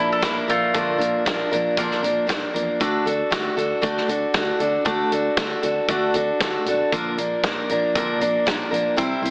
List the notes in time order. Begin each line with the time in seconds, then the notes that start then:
Already playing: A#1 F3 A#3 D4 A#4
0.12 A4
0.21 A#1 F3 A#3 D4 E4 A#4, kick, snare, closed hi-hat
0.48 A#1 F3 A3 A#3 D4 F4 A#4, closed hi-hat
0.74 A#1 A#2 D3 F3 A#3 D4 A#4, kick, closed hi-hat
0.98 A#1 F3 A#3 D4 A#4, closed hi-hat
1.25 A#1 F3 A#3 D4 A#4, kick, snare, closed hi-hat
1.51 A#1 F3 A#3 D4 A#4, closed hi-hat
1.77 A#1 A#2 D3 F3 A#3 D4 A#4, kick, closed hi-hat
1.91 snare
2.02 A#1 F3 A#3 D4 A#4, closed hi-hat
2.27 A#1 F3 A#3 D4 A#4, kick, snare, closed hi-hat
2.54 E2 F3 A#3 D4 A#4, closed hi-hat
2.80 D2 D3 A3 D4 F#4 A4, kick, closed hi-hat
3.06 D2 D4 F#4 A4, closed hi-hat
3.31 D2 A3 D4 F#4 A4, kick, snare, closed hi-hat
3.57 D2 D4 F#4 A4, closed hi-hat
3.82 D2 D3 A3 D4 F#4 A4, kick, closed hi-hat
3.97 snare
4.08 D2 D4 F#4 A4, closed hi-hat
4.34 D2 A3 D4 F#4 A4, kick, snare, closed hi-hat
4.59 D2 D4 F#4 A4, closed hi-hat
4.85 D2 D3 A3 D4 F#4 A4, kick, closed hi-hat
5.12 D2 D4 F#4 A4, closed hi-hat
5.37 D2 A3 D4 F#4 A4, kick, snare, closed hi-hat
5.62 D2 D4 F#4 A4, closed hi-hat
5.89 D2 D3 A3 D4 F#4 A4, kick, closed hi-hat
6.14 D2 D4 F#4 A4, closed hi-hat
6.40 D2 A3 D4 F#4 A4, kick, snare, closed hi-hat
6.65 B1 D4 F#4 A4, closed hi-hat
6.92 A#1 A#2 D3 F3 A#3 D4 A#4, kick, closed hi-hat
7.18 A#1 F3 A#3 D4 A#4, closed hi-hat
7.44 A#1 F3 A#3 D4 A#4, kick, snare, closed hi-hat
7.69 A#1 F3 A#3 D4 A#4, closed hi-hat
7.95 A#1 A#2 D3 F3 A#3 D4 A#4, kick, closed hi-hat
8.19 A#1 F3 A#3 D4 A#4, closed hi-hat
8.46 A#1 F3 A#3 D4 A#4, kick, snare, closed hi-hat
8.71 A#1 F3 A#3 D4 A#4, closed hi-hat
8.96 C2 C3 G3 C4 E4 C5, kick, closed hi-hat
9.22 C2 C4 E4 C5, closed hi-hat